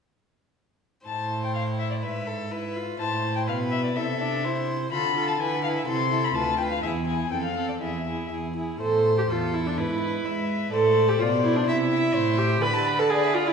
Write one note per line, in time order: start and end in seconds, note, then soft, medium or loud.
1.06 2.04 A2 soft
1.06 2.48 E4 soft
1.06 2.04 C5 soft
1.06 1.41 A5 medium
1.44 1.54 G5 soft
1.54 1.62 F5 medium
1.79 1.90 E5 medium
1.91 1.96 D5 soft
2.02 2.99 G#2 soft
2.02 2.29 B4 soft
2.02 2.74 E5 medium
2.27 2.52 A4 soft
2.51 2.77 E4 soft
2.51 2.99 B4 soft
2.75 3.02 F4 soft
2.99 3.50 A2 soft
2.99 3.95 E4 soft
2.99 3.49 C5 soft
2.99 3.33 A5 medium
3.36 3.41 G5 soft
3.48 3.96 B2 soft
3.48 3.98 B4 medium
3.48 3.56 F5 medium
3.71 3.84 E5 medium
3.85 3.97 D5 medium
3.95 4.90 C3 soft
3.95 4.04 E4 soft
3.95 4.46 A4 soft
3.95 4.68 E5 medium
4.20 4.46 D4 medium
4.44 4.91 E4 soft
4.44 4.92 C5 medium
4.92 5.35 D3 medium
4.92 5.16 F4 soft
4.92 5.16 A4 medium
4.92 5.30 B5 medium
5.16 5.39 F4 soft
5.16 5.40 A4 soft
5.28 5.42 A5 medium
5.40 5.82 D3 medium
5.40 5.63 E4 soft
5.40 5.64 B4 medium
5.40 5.63 G#5 medium
5.63 5.87 E4 soft
5.63 5.88 B4 soft
5.63 5.68 F5 medium
5.77 5.87 E5 soft
5.87 6.29 C3 medium
5.87 6.11 E4 soft
5.87 6.11 A4 soft
5.87 6.26 C6 medium
6.12 6.35 E4 soft
6.12 6.35 A4 soft
6.25 6.36 B5 medium
6.35 6.77 D2 soft
6.35 6.59 F4 soft
6.35 6.59 B4 soft
6.35 6.57 A5 medium
6.58 6.83 F4 soft
6.58 6.83 B4 soft
6.58 6.63 G5 medium
6.71 6.82 F5 medium
6.82 7.26 E2 medium
6.82 7.06 E4 soft
6.82 7.07 G#4 soft
6.82 6.90 E5 medium
7.06 7.30 E4 soft
7.06 7.31 G#4 soft
7.06 7.31 G#5 medium
7.31 7.75 F2 soft
7.31 7.54 C4 soft
7.31 7.56 A4 soft
7.31 7.36 G5 medium
7.43 7.68 F5 medium
7.55 7.80 C4 soft
7.55 7.81 A4 soft
7.69 7.74 D5 soft
7.80 8.25 E2 soft
7.80 8.05 E4 soft
7.80 8.06 G#4 soft
7.80 8.30 E5 soft
8.07 8.30 E4 soft
8.07 8.31 G#4 soft
8.30 8.75 E2 soft
8.30 8.55 E4 soft
8.30 8.56 G#4 soft
8.56 8.79 E4 soft
8.56 8.80 G#4 soft
8.80 9.26 A2 soft
8.80 9.14 A4 medium
8.80 9.32 C5 soft
9.18 9.23 G4 medium
9.28 9.79 E2 soft
9.28 9.55 F4 medium
9.28 9.79 A4 soft
9.53 9.68 E4 medium
9.66 9.79 D4 medium
9.77 10.24 G#2 soft
9.77 10.49 E4 medium
9.77 10.27 B4 medium
9.77 10.01 B4 soft
10.02 10.75 B4 soft
10.24 10.71 G#3 medium
10.24 10.72 E5 medium
10.72 11.19 A2 medium
10.72 11.10 A4 medium
10.72 11.22 C5 soft
10.72 11.21 D5 medium
11.08 11.19 G4 medium
11.20 11.67 B2 medium
11.20 11.28 F4 medium
11.20 11.70 C5 medium
11.20 11.68 D5 medium
11.43 11.57 E4 medium
11.56 11.66 D4 medium
11.67 12.14 C3 medium
11.67 12.39 E4 medium
11.67 12.62 E5 medium
11.67 11.77 E5 medium
11.92 12.17 E5 medium
12.15 12.62 A2 medium
12.15 12.62 C5 medium
12.38 12.63 G4 medium
12.62 13.53 D3 medium
12.62 13.00 B4 medium
12.62 13.53 D5 medium
12.62 12.76 B5 medium
12.74 12.88 A5 soft
12.87 13.01 B5 soft
12.99 13.11 A4 medium
12.99 13.11 A5 soft
13.10 13.36 G#4 medium
13.10 13.25 D5 medium
13.23 13.36 E5 soft
13.34 13.48 F4 medium
13.34 13.48 D5 medium
13.46 13.53 E4 medium
13.46 13.53 E5 soft